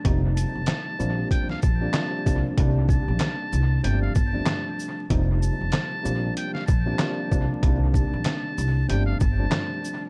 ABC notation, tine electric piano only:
X:1
M:4/4
L:1/16
Q:"Swing 16ths" 1/4=95
K:Cdor
V:1 name="Tine electric piano" clef=bass
[C,F,G,B,E]6 [C,F,G,B,D]4 z [C,F,G,B,D] [C,F,G,B,D]2 [C,F,G,B,D]2 | [C,E,G,B,D]8 [C,F,G,A,D]2 z [C,F,G,A,D]4- [C,F,G,A,D] | [C,F,G,B,E]6 [C,F,G,B,D]4 z [C,F,G,B,D] [C,F,G,B,D]2 [C,F,G,B,D]2 | [C,E,G,B,D]8 [C,F,G,A,D]2 z [C,F,G,A,D]4- [C,F,G,A,D] |]